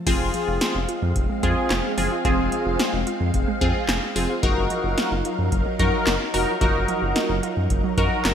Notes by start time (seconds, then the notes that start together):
0.07 F1 F3 G#3 C4 F4 G#4 F5, kick, closed hi-hat, crash
0.20 F1
0.34 F3, closed hi-hat
0.48 F1 F4
0.61 F4, snare, closed hi-hat
0.75 F1 F4
0.89 F4, closed hi-hat
1.02 F2 F3
1.16 F1, kick, closed hi-hat
1.29 G#3
1.43 F2 F3 C4 F4 G#4, kick, closed hi-hat
1.70 F1, snare, clap, closed hi-hat
1.98 F#1 F3 C4 F4 G#4, open hi-hat
2.11 F4
2.25 F1 F3 C4 F4 G#4, kick, closed hi-hat
2.39 F1
2.52 F3, closed hi-hat
2.66 F1 F4
2.79 F4, snare, closed hi-hat
2.93 F1 F4
3.07 F4, closed hi-hat
3.20 F2 F3
3.34 F1, kick, closed hi-hat
3.48 G#3
3.61 F2 F3 C4 F4 G#4, kick, closed hi-hat
3.89 F1, snare, clap, closed hi-hat
4.16 F1 F3 C4 F4 G#4, open hi-hat
4.29 F4
4.43 F#1 F3 F#3 D#4 F#4 A#4, kick, closed hi-hat
4.57 F#1
4.70 F3, closed hi-hat
4.84 F#1 F4
4.98 F4, snare, closed hi-hat
5.11 F#1 F4
5.25 F4, closed hi-hat
5.39 F#2 F3
5.52 F#1, kick, closed hi-hat
5.66 F#3
5.79 F#2 F3 D#4 F#4 A#4, kick, closed hi-hat
6.07 F#1, snare, clap, closed hi-hat
6.34 F1 F3 D#4 F#4 A#4, open hi-hat
6.48 F4
6.61 F#1 F3 D#4 F#4 A#4, kick, closed hi-hat
6.75 F#1
6.88 F3, closed hi-hat
7.02 F#1 F4
7.16 F4, snare, closed hi-hat
7.29 F#1 F4
7.43 F4, closed hi-hat
7.57 F#2 F3
7.70 F#1, kick, closed hi-hat
7.84 F#3
7.98 F#2 F3 D#4 F#4 A#4, kick, closed hi-hat
8.25 F#1, snare, clap, closed hi-hat